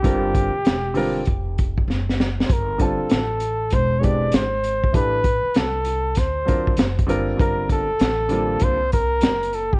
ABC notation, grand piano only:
X:1
M:4/4
L:1/8
Q:"Swing 16ths" 1/4=98
K:Gdor
V:1 name="Grand piano"
[D,G,CFB] z2 [D,G,CFB] z4 | z [D,G,CFA] z3 [E,^G,^B,D=G] z2 | [E,A,DG=B] z4 [^F,CD^E^A] z [D,G,CEA] | [D,G,CFB] z2 [D,G,B,CF] z4 |]